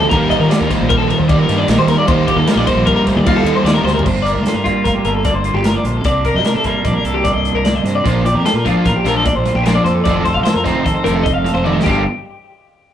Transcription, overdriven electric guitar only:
Already playing: D#4
0.12 D#3 G3 A#3 D#4
0.51 D#3 G3 A#3 D#4
0.70 G3 A#3 D#4
1.28 D#3 G3 A#3 D#4
1.48 G3 A#3 D#4
1.67 D#3 G3 A#3 D#4
2.08 D#3 G3 A#3 D#4
2.47 D#3 G3 A#3 D#4
2.67 G3 A#3 D#4
3.26 D#3 G3 A#3 D#4
3.45 G3 A#3 D#4
3.65 D#3 G3 A#3 D#4
8.04 A#2 F3 A#3 D4
8.25 muted overdriven electric guitar stroke
8.45 muted overdriven electric guitar stroke
8.65 A#2 F3 A#3 D4
8.86 muted overdriven electric guitar stroke
9.05 A#2 F3 A#3 D4
9.26 muted overdriven electric guitar stroke
9.46 muted overdriven electric guitar stroke
9.66 A#2 F3 A#3 D4
9.85 muted overdriven electric guitar stroke
10.06 C3 D#3 A3 D#4
10.25 muted overdriven electric guitar stroke
10.46 muted overdriven electric guitar stroke
10.64 C3 D#3 A3 D#4
10.85 muted overdriven electric guitar stroke
11.04 C3 D#3 A3 D#4
11.25 muted overdriven electric guitar stroke
11.45 muted overdriven electric guitar stroke
11.64 C3 D#3 A3 D#4
11.84 G2 D3 G3 A#3 D4 G4

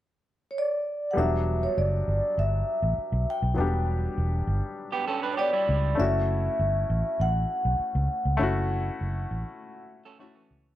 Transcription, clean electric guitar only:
4.92 B3 G4
5.08 C#4 A4
5.23 D4 B4
5.37 B3 G4
5.53 G3 E4
10.05 C#4 A4
10.20 A3 F#4
10.35 E3 C#4

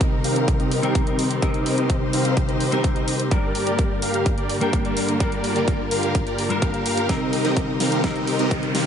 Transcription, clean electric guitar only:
Already playing: C3 G3 C4 D#4 A#4
0.82 C3 G3 C4 D#4 A#4
1.41 C3 G3 C4 D#4 A#4
2.71 C3 G3 C4 D#4 A#4
3.30 G2 G3 A#3 D4 A#4
4.60 G2 G3 A#3 D4 A#4
5.19 G2 G3 A#3 D4 A#4
6.49 G2 G3 A#3 D4 A#4
7.08 C3 G3 C4 D#4 A#4
8.03 C3 G3 C4 D#4 A#4

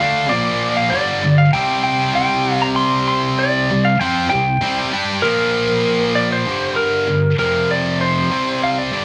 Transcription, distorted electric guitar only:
0.00 D3 A3 D4
0.30 A#2 F3 A#3
0.92 G2 D3 G3
1.23 G2 D3
1.54 C3 G3 C4
3.70 C3 G3
4.01 F3 C4 F4
4.31 C3 G3
4.61 C3 G3 C4
4.92 G3 D4 G4
5.23 A#2 F3 A#3
6.46 G2 D3 G3
7.08 G2 D3
7.39 F2 C3 F3
8.31 C3 G3 C4
8.92 G2 D3 G3

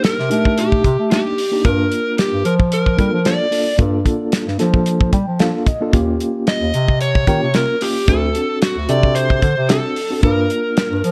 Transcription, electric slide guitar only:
0.05 A#4
0.59 G4
1.12 G4
1.66 A#4
2.19 G4
2.46 A#4
2.73 A#4
3.26 D5
6.48 D#5
7.02 C#5
7.56 A#4
7.82 G4
8.09 A4
8.63 F#4
8.89 D5
9.15 C5
9.69 A4
10.23 A#4

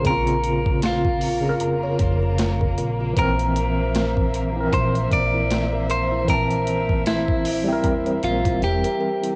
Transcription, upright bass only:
0.05 A#1
1.62 F1
2.00 F1
2.78 A#1
3.17 A#1
4.73 A#1
5.12 A#1
6.29 A#1
7.84 E1
8.24 A#1
8.62 E1

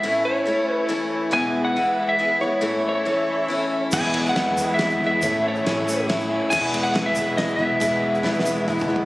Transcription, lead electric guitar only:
Already playing: E5
0.25 C#5
0.71 B4
1.33 G#5
1.65 F#5
2.09 E5
2.41 C#5
2.89 C#5
3.94 G#5
4.29 F#5
4.74 E5
5.07 E5
5.48 C#5
6.50 G#5
6.83 F#5
7.06 E5
7.37 D#5
7.56 E5

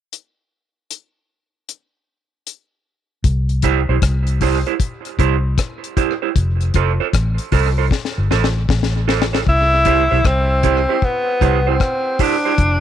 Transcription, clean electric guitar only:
3.64 E4 G4 C5
3.89 E4 G4 C5
4.42 E4 G4 C5
4.67 E4 G4 C5
5.19 E4 G4 C5
5.97 E4 G4 C5
6.22 E4 G4 C5
6.76 F4 A4 C5
7.00 F4 A4 C5
7.52 F4 A4 C5
7.78 F4 A4 C5
8.31 F4 A4 C5
9.08 F4 A4 C5
9.33 F4 A4 C5
9.86 E4 G4 C5
10.11 E4 G4 C5
10.64 E4 G4 C5
10.89 E4 G4 C5
11.41 E4 G4 C5
11.67 E4 G4 C5
12.20 E4 G4 C5
12.45 E4 G4 C5

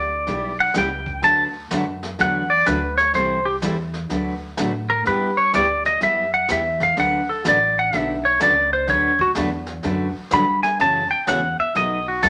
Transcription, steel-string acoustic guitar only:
0.27 G3 B3 E4 G4
0.75 G3 B3 E4 G4
1.23 D3 F#3 A3 D4 F#4 B4
1.71 D3 F#3 A3 D4 F#4 B4
2.19 D3 F#3 A3 D4 F#4 B4
2.67 D3 F#3 A3 D4 F#4 B4
3.15 E3 G3 C4 E4 A4
3.62 E3 G3 C4 E4 A4
4.11 D3 F#3 A3 D4 F#4 B4
4.59 D3 F#3 A3 D4 F#4 B4
5.06 G3 B3 E4 G4
5.54 G3 B3 E4 G4
6.02 G3 B3 E4 G4
6.48 G3 B3 E4 G4
6.96 D3 F#3 A3 D4 F#4 B4
7.44 D3 F#3 A3 D4 F#4 B4
7.93 D3 F#3 A3 D4 F#4 B4
8.40 D3 F#3 A3 D4 F#4 B4
8.87 D3 F#3 A3 D4 F#4 B4
9.36 D3 F#3 A3 D4 F#4 B4
9.83 D3 F#3 A3 D4 F#4 B4
10.32 D3 F#3 A3 D4 F#4 B4
10.79 C#3 E3 A3 C#4 F#4
11.27 C#3 E3 A3 C#4 F#4
11.75 B2 F#3 A3 D#4 F#4
12.22 B2 F#3 A3 D#4 F#4

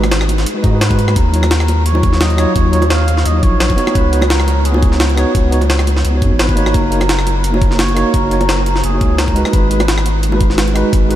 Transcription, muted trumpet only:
0.82 B4
1.16 A#4
1.86 C#5
2.21 D#5
2.56 C#5
2.91 F5
3.26 D#5
3.43 C#5
3.95 B4
4.30 A#4
4.65 G#4
6.40 B4
6.74 A#4
7.38 B4
7.44 A#4
7.79 C#5
8.14 A#4
8.84 G#4
9.18 A#4
9.53 B4

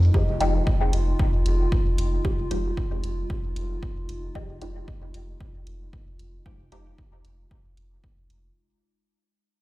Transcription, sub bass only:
0.29 F1
0.41 F1
0.93 F1
1.46 F1
1.98 F1
2.39 F1
2.51 F1
3.04 F1
3.56 F1
4.09 F1
4.50 F1
4.62 F1
5.14 F1
5.67 F1
6.19 F1
6.60 F1
6.72 F1
7.25 F1
7.77 F1
8.30 F1

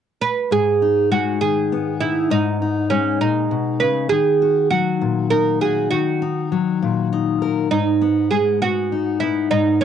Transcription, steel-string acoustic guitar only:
0.51 G#2
0.82 D#4
1.11 G#3
1.42 D#3
1.72 B3
2.02 D#4
2.30 G#2
2.62 D#4
2.91 G#3
3.21 A#2
3.51 B2
3.81 C#3
4.11 D#3
4.42 F#4
4.71 F#3
5.01 A#2
5.32 D#4
5.62 F#4
5.92 D#3
6.22 D#4
6.52 F#3
6.82 A#2
7.13 D#4
7.42 A#4
7.71 G#2
8.01 B3
8.32 G#3
8.62 B3
8.92 D#4
9.22 B3
9.51 G#2
9.81 B3

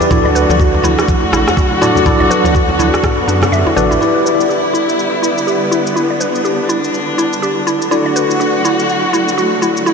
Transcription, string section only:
Already playing: D3
0.11 F#3 A3 F#4
2.06 B3
4.00 D3 G3 B3 E4
5.96 D4
7.91 F#3 A3 F#4
9.86 E4

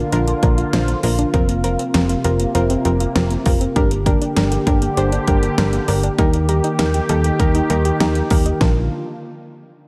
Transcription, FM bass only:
0.12 A#1
0.43 A#1
0.73 A#1
1.03 A#1
1.34 F1
1.94 F1
2.25 F1
2.55 F1
2.85 F1
3.15 F1
3.46 F1
3.76 G1
4.37 G1
4.67 G1
4.97 G1
5.28 G1
5.58 G1
5.88 G1
6.18 D#2
6.79 D#2
7.09 D#2
7.40 D#2
7.70 D#2
8.00 D#2
8.31 D#2
8.61 A#1

